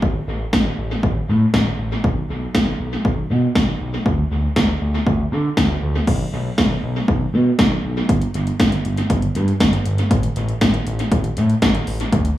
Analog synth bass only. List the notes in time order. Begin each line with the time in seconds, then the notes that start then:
0.02 A1
0.28 A1
0.53 A1
0.78 A1
1.03 A1
1.29 A2
1.54 A1
1.79 A1
2.04 B1
2.29 B1
2.55 B1
2.80 B1
3.05 B1
3.30 B2
3.55 B1
3.81 B1
4.06 D2
4.31 D2
4.56 D2
4.81 D2
5.07 D2
5.32 D3
5.57 D2
5.82 D2
6.07 B1
6.33 B1
6.58 B1
6.83 B1
7.08 B1
7.33 B2
7.59 B1
7.84 B1
8.09 G1
8.34 G1
8.60 G1
8.85 G1
9.10 G1
9.35 G2
9.60 G1
9.85 G1
10.11 A1
10.36 A1
10.61 A1
10.86 A1
11.12 A1
11.37 A2
11.62 A1
11.87 A1
12.12 D2